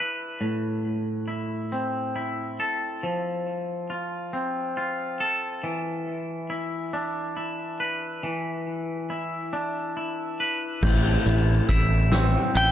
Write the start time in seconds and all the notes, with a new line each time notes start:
Already playing: D4 E4 B4
0.41 A2
1.28 E4
1.72 C4
2.16 E4
2.60 A4
3.03 F3
3.90 F4
4.33 C4
4.77 F4
5.20 A4
5.64 E3
6.50 E4
6.93 D4
7.37 E4
7.80 B4
8.23 E3
9.10 E4
9.53 D4
9.97 E4
10.40 B4
10.83 A1 A2 E3 A3 C4 G4 G6, kick, crash
11.26 A1, closed hi-hat
11.69 A1 E4 E6, kick, closed hi-hat
12.11 C4 E6, snare, closed hi-hat
12.55 A1 E4 G5 G6, closed hi-hat